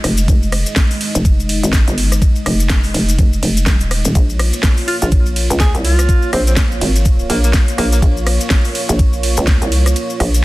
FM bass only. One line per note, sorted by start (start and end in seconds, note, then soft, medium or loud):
0.04 0.27 F1 loud
0.28 0.64 F1 loud
1.15 1.61 F1 loud
1.63 1.85 G#1 medium
1.88 2.20 G1 loud
2.46 2.93 F1 loud
2.94 3.17 F1 loud
3.19 3.41 F1 medium
3.43 3.65 F1 loud
3.67 4.03 D#1 medium
4.05 4.14 D#1 medium
4.15 4.51 A#1 loud
5.02 5.48 A#1 loud
5.50 5.72 C#2 medium
5.75 6.07 C2 loud
6.33 6.80 A#1 loud
6.81 7.28 G#1 loud
7.30 7.52 A#1 loud
7.78 8.01 A#1 loud
8.02 8.38 A#1 loud
8.89 9.35 A#1 loud
9.38 9.60 C#2 loud
9.62 9.94 C2 loud
10.20 10.45 A#1 loud